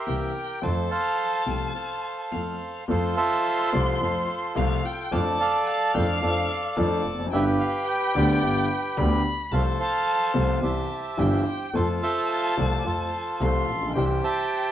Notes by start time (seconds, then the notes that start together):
Already playing: G4 A#4 E5
0.07 C2 C3 E3 A#3 C4 G4 G5
0.62 F2 F3 A3 C4 A4 C5 F5 A5
0.91 C5 F5 A5
1.46 C2 C3 F3 A3 C4 A4 G5
1.75 A4 C5 F5
2.32 F2 F3 A3 C4 A4 F5
2.88 F2 F3 A3 C4 F4 A4 C5 C6
3.17 A4 C5 E5
3.72 C2 C3 F3 A3 C4 A4 D5
4.00 F2 F3 A3 C4 F4 A4 C5
4.55 C2 C3 F3 A3 C4 A4 F5
4.85 G5
5.11 F2 F3 A3 D4 A4 D5 F5 A5
5.40 D5 F5 A5
5.68 F5
5.94 F2 F3 A3 D4 A4 G5
6.22 F2 F3 A3 D4 A4 D5 F5
6.77 F2 F3 A3 D4 A4 A5
7.06 F1
7.12 E2
7.19 F2
7.26 F#2
7.32 G1 G2 D3 G3 B3 G4 B4 E5 G5
7.60 F5
7.86 G5
8.14 D2 D3 G3 B3 G4 B4 D5
8.42 G1 G2 D3 G3 B3 G4
8.97 D2 D3 G3 B3 G4 B5
9.52 C2 C3 F3 A3 C4 A4 C5 F5 A5
9.80 C5 F5 A5
10.34 C2 C3 F3 A3 C4 A4 F5
10.62 C2 C3 E3 G3 C4 G4 C5 E5 A5
11.17 G1 G2 E3 G3 C4 G4 G5
11.74 F2 F3 A3 C4 F4 A4 C5 A5
12.03 A4 C5 E5
12.57 C2 C3 F3 A3 C4 A4 D5
12.79 D5
12.85 F2 F3 A3 C4 F4 A4 C5
13.40 C2 C3 F3 A3 C4 A4 C6
13.69 A#1
13.75 A1
13.83 A#1
13.89 B1
13.95 C2 C3 E3 G3 C4 G4 C5 E5 G5
14.23 C5 E5 A5